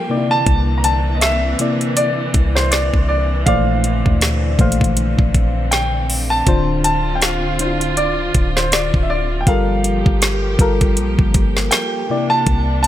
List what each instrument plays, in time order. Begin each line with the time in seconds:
Already playing: fm electric piano G3 F4 A4 A#4, string section A#3, grand piano G5
0.09 fm electric piano C3 A#3 D#4 D5, string section D3 E3 C4
0.17 fm electric piano E4
0.31 grand piano A5
0.46 808-style bass C2, kick, closed hi-hat
0.78 grand piano A#5
0.84 grand piano A5, closed hi-hat
1.15 grand piano D#5
1.21 grand piano E5, snare, closed hi-hat
1.59 fm electric piano C3 A#3 E4 D5, closed hi-hat
1.81 closed hi-hat
1.97 grand piano D5, closed hi-hat
2.34 808-style bass C2, kick, closed hi-hat
2.55 grand piano C5, snare
2.71 grand piano D5, snare, closed hi-hat
2.94 808-style bass C2, kick
3.09 grand piano D5
3.46 808-style bass A#1, fm electric piano A#2 E3 A3 C5 D5, string section C4, grand piano F5, kick, closed hi-hat
3.84 closed hi-hat
4.06 808-style bass D2, kick
4.21 snare, closed hi-hat
4.59 808-style bass A#1, fm electric piano A#2 E3 A3 C5 F5, kick, closed hi-hat
4.72 closed hi-hat
4.81 kick, closed hi-hat
4.97 closed hi-hat
5.19 808-style bass A#1, kick
5.34 kick, closed hi-hat
5.71 grand piano G5, snare, closed hi-hat
6.10 open hi-hat
6.30 grand piano A5
6.47 808-style bass D1, fm electric piano D3 D4 F4 C5, string section F4, kick, closed hi-hat
6.84 grand piano A5, closed hi-hat
7.15 grand piano G5
7.22 grand piano F5, snare, closed hi-hat
7.59 fm electric piano D3 D4 E4 C5, closed hi-hat
7.67 fm electric piano F4
7.81 closed hi-hat
7.97 grand piano D5, closed hi-hat
8.35 808-style bass D1, kick, closed hi-hat
8.56 grand piano C5, snare
8.72 grand piano D5, snare, closed hi-hat
8.94 808-style bass D1, kick
9.03 grand piano E5
9.10 grand piano D5
9.41 grand piano G5
9.47 808-style bass G1, string section F3 A#3 G4, fm electric piano G3 F4 A4 A#4, grand piano F5, kick, closed hi-hat
9.84 closed hi-hat
10.06 808-style bass G1, kick
10.22 snare, closed hi-hat
10.59 808-style bass G1, fm electric piano G3 F4 A4 A#4, kick, closed hi-hat
10.81 kick, closed hi-hat
10.96 808-style bass A#1, closed hi-hat
11.19 808-style bass G1, kick
11.34 kick, closed hi-hat
11.57 snare
11.71 grand piano G5, snare, closed hi-hat
12.09 string section C3 E3 D4, fm electric piano C3 A#3 E4 D5
12.30 grand piano A5
12.47 808-style bass C2, kick, closed hi-hat
12.83 grand piano A5, closed hi-hat